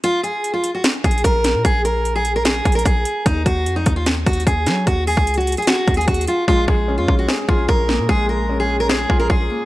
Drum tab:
HH |x-----------x-----------x-----------x-----------x-----------x---x---x---x-----------x-----------|x-----------x-----------x-----------x-----------x-----------x---x---x---x-----------x-----------|x-----------x-----------x-----------x-----------x-----------x---x---x---x-----------x-----------|x-----------o-----------x---x---x---x--x--x--x--x-----------x---x---x---x---x---x---x-----------|
SD |------------------------------------------------o-----------------------------------o-----------|------------------------------------------------o-----------------------------------------------|------------------------------------------------o-----------------------------------o-----------|------------------------------------------------o-----------------------------------------------|
BD |------------------------------------------------------------o-----------o-----------------------|o-----------------------------------------------------------o-----------o-----------------------|o-----------o-----------------------o-----------------------o-----------o-----------------------|o-----------------o-----------------------------------------o-----------o-----------------------|

HH |------------------------------------------------------------------------------------------------|------------------------------------------------------------------------------------------------|
SD |------------------------------------------------o-----------------------------------o-----------|------------------------------------------------o-----------------------------------------------|
BD |o-----------o-----------------------o-----------------------o-----------o-----------------------|o-----------------------------------------------------------o-----------o-----------------------|